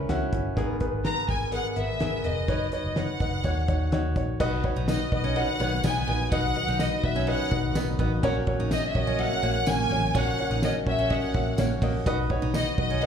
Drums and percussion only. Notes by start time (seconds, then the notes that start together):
0.09 snare, closed hi-hat
0.33 kick, closed hi-hat
0.57 kick, closed hi-hat
0.80 kick, closed hi-hat
1.05 snare, closed hi-hat
1.29 kick, closed hi-hat
1.52 closed hi-hat
1.76 closed hi-hat
2.00 snare, closed hi-hat
2.24 closed hi-hat
2.48 kick, closed hi-hat
2.72 closed hi-hat
2.96 snare, closed hi-hat
3.20 kick, closed hi-hat
3.44 kick, closed hi-hat
3.68 kick, closed hi-hat
3.92 snare, closed hi-hat
4.16 kick, closed hi-hat
4.40 kick, crash
4.64 kick, ride
4.88 snare, ride, tambourine
5.12 kick, ride
5.24 snare
5.36 ride
5.60 ride
5.84 snare, ride, tambourine
6.07 ride
6.32 kick, ride
6.55 ride
6.79 snare, ride, tambourine
7.03 kick, ride
7.15 snare
7.27 ride
7.51 kick, ride
7.75 snare, ride, tambourine
7.99 kick, ride
8.23 kick, ride
8.47 kick, ride
8.71 snare, ride, tambourine
8.95 kick, ride
9.07 snare
9.19 ride
9.43 ride
9.66 snare, ride, tambourine
9.91 ride
10.15 kick, ride
10.38 ride
10.62 snare, ride, tambourine
10.87 kick, ride
11.10 kick, ride
11.34 kick, ride
11.58 snare, ride, tambourine
11.82 kick, open hi-hat, ride
12.06 kick, hi-hat pedal, ride
12.30 kick, ride
12.54 snare, ride, tambourine
12.78 kick, ride
13.02 ride